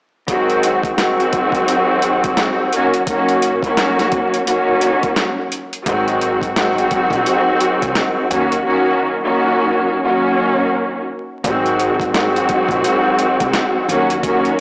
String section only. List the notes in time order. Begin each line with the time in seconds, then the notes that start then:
0.28 D#3 F#3 G#3 C4 F#4
0.98 D#3 F#3 G#3 C4 F#4
2.73 D#3 F#3 A#3 C#4 F#4
3.06 D#3 F#3 A#3 C#4 F#4
3.64 D#3 F#3 A#3 C#4 F#4
4.45 D#3 F#3 A#3 C#4 F#4
5.86 D#3 F#3 G#3 C4 F#4
6.56 D#3 F#3 G#3 C4 F#4
8.31 D#3 F#3 A#3 C#4 F#4
8.64 D#3 F#3 A#3 C#4 F#4
9.22 D#3 F#3 A#3 C#4 F#4
10.03 D#3 F#3 A#3 C#4 F#4
11.44 D#3 F#3 G#3 C4 F#4
12.14 D#3 F#3 G#3 C4 F#4
13.89 D#3 F#3 A#3 C#4 F#4
14.22 D#3 F#3 A#3 C#4 F#4